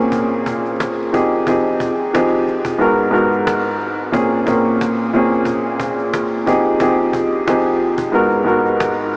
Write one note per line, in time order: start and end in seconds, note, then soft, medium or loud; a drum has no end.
0.00 1.13 A#2 medium
0.00 1.14 A#3 medium
0.00 1.11 C4 medium
0.00 1.14 C#4 medium
0.00 1.13 G#4 loud
0.00 cajon slap soft
0.12 cajon bass medium
0.46 cajon bass loud
0.66 cajon slap soft
0.80 cajon slap loud
1.12 1.44 F3 medium
1.12 1.44 C4 medium
1.12 1.44 D#4 medium
1.12 1.45 G4 medium
1.12 1.45 G#4 loud
1.12 cajon bass medium
1.46 2.08 F3 medium
1.46 2.09 C4 medium
1.46 2.09 D#4 medium
1.46 2.09 G4 medium
1.46 2.10 G#4 loud
1.46 cajon bass loud
1.80 cajon bass loud
2.13 2.80 F3 loud
2.13 2.80 C4 medium
2.13 2.81 D#4 medium
2.13 2.81 G4 medium
2.13 2.81 G#4 loud
2.13 cajon slap loud
2.47 cajon slap soft
2.65 cajon bass loud
2.79 3.09 G#2 medium
2.79 3.10 G#3 medium
2.79 3.11 B3 medium
2.79 3.11 F#4 medium
2.79 3.12 A#4 loud
2.79 cajon slap soft
3.11 4.05 G#2 loud
3.11 4.05 G#3 medium
3.11 4.06 B3 medium
3.11 4.06 F#4 medium
3.11 4.06 A#4 loud
3.15 cajon slap soft
3.32 cajon slap soft
3.47 cajon slap loud
3.80 cajon slap soft
4.12 4.44 A#2 loud
4.12 4.44 A#3 medium
4.12 4.44 C4 medium
4.12 4.45 C#4 medium
4.12 4.45 G#4 loud
4.12 cajon bass loud
4.46 5.08 A#2 loud
4.46 5.09 A#3 medium
4.46 5.09 C4 medium
4.46 5.09 C#4 medium
4.46 5.10 G#4 medium
4.46 cajon bass loud
4.81 cajon slap loud
5.13 6.47 A#2 loud
5.13 6.47 A#3 medium
5.13 6.45 C4 medium
5.13 6.48 C#4 medium
5.13 6.47 G#4 loud
5.13 cajon slap soft
5.34 cajon slap soft
5.45 cajon bass medium
5.80 cajon bass loud
5.99 cajon slap soft
6.14 cajon slap loud
6.46 6.77 F3 medium
6.46 6.78 C4 medium
6.46 6.78 D#4 medium
6.46 6.78 G4 medium
6.46 6.78 G#4 loud
6.46 cajon bass medium
6.80 7.42 F3 medium
6.80 7.42 C4 medium
6.80 7.43 D#4 medium
6.80 7.43 G4 medium
6.80 7.43 G#4 loud
6.80 cajon bass loud
7.13 cajon bass loud
7.47 8.13 F3 loud
7.47 8.14 C4 medium
7.47 8.14 D#4 medium
7.47 8.14 G4 medium
7.47 8.15 G#4 loud
7.47 cajon slap loud
7.98 cajon bass loud
8.12 8.43 G#2 medium
8.12 8.43 G#3 medium
8.12 8.44 B3 medium
8.12 8.45 F#4 medium
8.12 8.45 A#4 loud
8.12 cajon slap soft
8.31 cajon slap soft
8.44 9.17 G#2 medium
8.44 9.17 G#3 medium
8.44 9.17 B3 medium
8.44 9.17 F#4 medium
8.44 9.17 A#4 loud
8.44 cajon slap soft
8.65 cajon slap soft
8.80 cajon slap loud
9.13 cajon slap soft